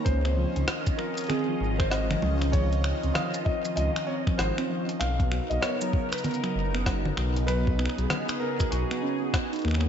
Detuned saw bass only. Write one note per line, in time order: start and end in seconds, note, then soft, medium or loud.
0.06 0.45 C#2 loud
0.56 0.64 C#2 loud
1.60 2.16 G#1 loud
2.22 2.93 C#2 medium
3.03 3.11 C#2 medium
3.77 3.89 C#2 medium
4.39 4.51 G#1 medium
5.01 5.40 B1 loud
5.51 5.58 B1 loud
6.55 7.11 F#1 loud
7.17 7.87 B1 medium
7.98 8.06 B1 medium
8.72 8.84 B1 medium
9.65 9.87 D#2 loud